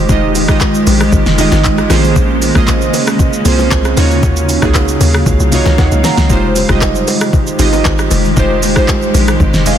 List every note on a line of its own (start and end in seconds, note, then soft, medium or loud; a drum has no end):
0.00 1.86 D#3 medium
0.00 0.09 G#3 loud
0.00 3.93 G#3 medium
0.00 0.09 D#4 medium
0.00 0.10 F4 medium
0.00 0.11 G4 medium
0.00 1.92 C5 loud
0.00 0.12 D#5 loud
0.09 0.50 F1 loud
0.09 0.40 G#3 medium
0.09 0.41 D#4 medium
0.09 0.41 F4 medium
0.09 1.89 G4 medium
0.09 0.41 G4 medium
0.09 0.42 D#5 loud
0.09 kick loud
0.09 low conga medium
0.09 shaker medium
0.35 open hi-hat medium
0.35 low bongo soft
0.35 shaker medium
0.48 0.83 G#1 medium
0.48 1.20 G#3 medium
0.48 1.21 D#4 medium
0.48 1.21 F4 medium
0.48 1.22 G4 medium
0.48 1.22 D#5 loud
0.48 kick medium
0.48 cross-stick loud
0.48 shaker soft
0.61 kick medium
0.61 clap loud
0.61 high bongo medium
0.61 shaker medium
0.74 shaker medium
0.87 1.10 A#1 medium
0.87 open hi-hat medium
0.87 high bongo medium
0.87 shaker loud
1.00 cross-stick loud
1.00 shaker medium
1.12 1.25 G#1 loud
1.12 kick loud
1.12 low conga medium
1.12 shaker medium
1.26 1.49 F1 medium
1.26 snare medium
1.26 shaker medium
1.38 1.90 G#3 loud
1.38 1.90 D#4 medium
1.38 1.90 F4 medium
1.38 1.91 G4 medium
1.38 1.91 D#5 loud
1.38 open hi-hat medium
1.38 low conga medium
1.38 shaker loud
1.52 1.86 G#1 loud
1.52 snare medium
1.52 low bongo medium
1.52 shaker medium
1.64 kick loud
1.64 clap loud
1.64 high bongo medium
1.64 shaker medium
1.78 cross-stick medium
1.78 shaker medium
1.90 2.14 A#1 loud
1.90 3.95 C#3 medium
1.90 2.42 A#3 loud
1.90 3.95 C#4 medium
1.90 2.42 C#4 medium
1.90 2.42 F4 medium
1.90 2.43 G#4 medium
1.90 2.43 C5 loud
1.90 cross-stick medium
1.90 snare medium
1.90 open hi-hat medium
1.90 high bongo soft
1.90 low bongo medium
1.90 shaker loud
2.04 shaker soft
2.16 2.52 A#1 loud
2.16 kick loud
2.16 low conga medium
2.16 shaker medium
2.42 open hi-hat medium
2.42 low bongo soft
2.42 shaker loud
2.55 2.90 A#1 loud
2.55 3.27 A#3 medium
2.55 3.28 C#4 medium
2.55 3.28 F4 medium
2.55 3.28 G#4 medium
2.55 3.29 D#5 loud
2.55 kick loud
2.55 cross-stick medium
2.55 shaker soft
2.68 kick medium
2.68 clap medium
2.68 high bongo medium
2.68 shaker medium
2.81 shaker medium
2.94 open hi-hat medium
2.94 high bongo medium
2.94 shaker loud
3.07 cross-stick loud
3.07 shaker medium
3.19 kick loud
3.19 low conga medium
3.19 shaker medium
3.33 shaker medium
3.45 3.69 C2 loud
3.45 3.95 A#3 loud
3.45 3.52 C4 medium
3.45 3.97 F4 medium
3.45 3.98 G#4 medium
3.45 3.98 C5 loud
3.45 open hi-hat medium
3.45 low conga medium
3.45 shaker loud
3.52 4.00 C#4 medium
3.59 low bongo medium
3.59 shaker medium
3.71 3.95 C2 loud
3.71 kick loud
3.71 clap loud
3.71 high bongo medium
3.71 shaker medium
3.85 cross-stick medium
3.85 shaker soft
3.97 4.20 D#2 loud
3.97 6.28 C#3 medium
3.97 6.28 F#3 medium
3.97 4.49 A#3 loud
3.97 4.49 D#4 medium
3.97 4.49 F4 medium
3.97 4.50 F#4 medium
3.97 4.50 C#5 loud
3.97 6.28 F5 medium
3.97 open hi-hat medium
3.97 high bongo soft
3.97 low bongo medium
3.97 shaker medium
4.11 shaker soft
4.23 4.58 D#2 loud
4.23 kick loud
4.23 low conga medium
4.23 shaker medium
4.36 shaker medium
4.49 open hi-hat medium
4.49 low bongo soft
4.49 shaker loud
4.62 4.97 C#2 medium
4.62 5.34 A#3 medium
4.62 5.35 D#4 medium
4.62 5.35 F4 medium
4.62 5.35 F#4 medium
4.62 5.36 G#4 loud
4.62 kick loud
4.62 cross-stick loud
4.62 low bongo medium
4.62 shaker soft
4.75 kick loud
4.75 clap loud
4.75 high bongo medium
4.75 shaker medium
4.88 shaker medium
5.01 5.24 D#2 medium
5.01 open hi-hat medium
5.01 high bongo medium
5.01 shaker loud
5.14 cross-stick loud
5.14 shaker medium
5.26 5.38 C#2 loud
5.26 kick loud
5.26 low conga medium
5.26 shaker medium
5.40 5.63 C2 medium
5.40 shaker medium
5.52 6.15 A#3 medium
5.52 6.15 D#4 medium
5.52 6.15 F4 medium
5.52 6.16 F#4 medium
5.52 6.16 C#5 loud
5.52 5.77 D#5 medium
5.52 open hi-hat medium
5.52 low conga medium
5.52 shaker loud
5.65 5.77 C#2 medium
5.65 snare medium
5.65 low bongo medium
5.65 shaker medium
5.78 5.90 D#2 loud
5.78 6.03 F#5 medium
5.78 kick loud
5.78 snare medium
5.78 high bongo medium
5.78 shaker medium
5.92 6.03 C#2 medium
5.92 shaker medium
6.04 6.29 A#5 medium
6.04 snare loud
6.04 open hi-hat medium
6.04 high bongo soft
6.04 low bongo medium
6.04 shaker loud
6.18 6.29 C#2 medium
6.18 snare loud
6.18 shaker soft
6.29 6.65 F1 loud
6.29 9.78 D#3 medium
6.29 6.61 G#3 medium
6.29 9.78 G#3 medium
6.29 6.61 D#4 medium
6.29 6.62 F4 medium
6.29 9.78 G4 medium
6.29 6.62 G4 medium
6.29 6.62 C5 loud
6.29 kick loud
6.29 low conga medium
6.29 shaker medium
6.56 open hi-hat medium
6.56 low bongo soft
6.56 shaker loud
6.69 7.04 F1 loud
6.69 6.75 G3 medium
6.69 7.42 D#4 medium
6.69 7.42 F4 medium
6.69 7.42 G4 medium
6.69 7.43 D#5 medium
6.69 kick medium
6.69 cross-stick loud
6.69 shaker soft
6.75 7.44 G#3 medium
6.81 kick medium
6.81 clap medium
6.81 high bongo medium
6.81 shaker medium
6.95 shaker medium
7.08 open hi-hat medium
7.08 high bongo medium
7.08 shaker loud
7.21 cross-stick loud
7.21 shaker medium
7.33 kick loud
7.33 low conga medium
7.33 shaker medium
7.47 shaker medium
7.59 7.83 G#1 loud
7.59 8.21 G#3 medium
7.59 8.22 D#4 medium
7.59 8.22 F4 medium
7.59 8.23 G4 medium
7.59 8.23 D#5 loud
7.59 open hi-hat medium
7.59 low conga medium
7.59 shaker loud
7.73 low bongo medium
7.73 shaker medium
7.85 8.09 G#1 medium
7.85 kick loud
7.85 clap loud
7.85 high bongo medium
7.85 shaker medium
7.99 cross-stick medium
7.99 shaker medium
8.11 8.34 F1 medium
8.11 open hi-hat medium
8.11 high bongo soft
8.11 low bongo medium
8.11 shaker loud
8.25 shaker soft
8.36 8.78 F1 loud
8.36 8.68 G#3 medium
8.36 8.68 D#4 medium
8.36 8.69 F4 medium
8.36 8.69 G4 medium
8.36 8.69 C5 loud
8.36 kick loud
8.36 low conga medium
8.36 shaker medium
8.63 open hi-hat medium
8.63 low bongo soft
8.63 shaker loud
8.75 9.11 G#1 medium
8.75 9.48 G#3 medium
8.75 9.48 D#4 medium
8.75 9.49 F4 medium
8.75 9.49 G4 medium
8.75 9.49 C5 loud
8.75 kick medium
8.75 cross-stick loud
8.75 shaker soft
8.88 kick loud
8.88 clap medium
8.88 high bongo medium
8.88 shaker medium
9.02 shaker medium
9.14 9.38 A#1 medium
9.14 open hi-hat medium
9.14 high bongo medium
9.14 shaker loud
9.28 cross-stick loud
9.28 shaker medium
9.40 9.52 G#1 loud
9.40 kick loud
9.40 low conga medium
9.40 shaker medium
9.54 9.77 F1 medium
9.54 snare medium
9.54 shaker medium
9.66 9.78 D#5 medium
9.66 9.78 F5 medium
9.66 9.78 G#5 medium
9.66 open hi-hat medium
9.66 low conga medium
9.66 shaker loud